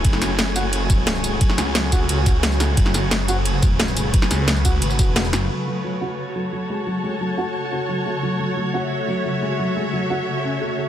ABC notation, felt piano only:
X:1
M:4/4
L:1/16
Q:1/4=176
K:F#m
V:1 name="Felt piano" clef=bass
F, z F,2 F,2 F2 z2 F,2 F,2 G, z | F,2 G, z F,2 F2 z2 F2 F,2 A,2 | F, z F,2 F,2 F2 z2 F,2 F,2 G, z | F,2 G, z F,2 F2 z2 F z F z F, z |
F, z F,2 F,2 F2 z2 F,2 F,2 G, z | F,2 G, z F,2 F2 z2 F2 F,2 A,2 | F, z F,2 F,2 F2 z2 F,2 F,2 G, z | F,2 G, z F,2 F2 z2 C2 A,2 A,2 |]